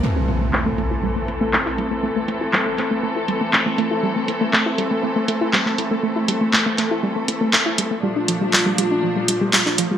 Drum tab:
CC |x---------------|----------------|----------------|----------------|
HH |--x---x---x---x-|--x---x---x---x-|--x---x---x---x-|--x---x---x---x-|
CP |----x-------xx--|----x-x-----x---|----x-------xx--|----x-x-----x---|

CC |----------------|
HH |--x---x---x---x-|
CP |----x-------xx--|